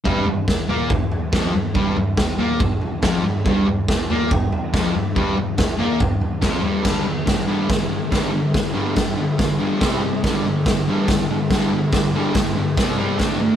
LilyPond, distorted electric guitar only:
\new Staff \with { instrumentName = "Distorted electric guitar" } { \clef bass \time 4/4 \key f \lydian \tempo 4 = 142 <g, g>8 g,8 r8 <bes, bes>8 g,8 r8 <f, f>8 g,8 | <g, g>8 g,8 r8 <bes, bes>8 g,8 r8 <f, f>8 g,8 | <g, g>8 g,8 r8 <bes, bes>8 g,8 r8 <f, f>8 g,8 | <g, g>8 g,8 r8 <bes, bes>8 g,8 r8 <f, f>8 <g, g>8 |
<g, d g>8 <g, d>8 <g, d>8 <g, d g>8 <g, d>8 <g, d>8 <g, d g>8 <g, d>8 | <g, d>8 <g, d g>8 <g, d>8 <g, d>8 <g, d>8 <g, d g>8 <c g c'>8 <c g>8 | <g, d g>8 <g, d>8 <g, d>8 <g, d g>8 <g, d>8 <g, d>8 <g, d g>8 <g, d>8 | <g, d>8 <g, d g>8 <g, d>8 <g, d>8 <c g c'>8 <c g c'>8 <d a d'>8 <d a>8 | }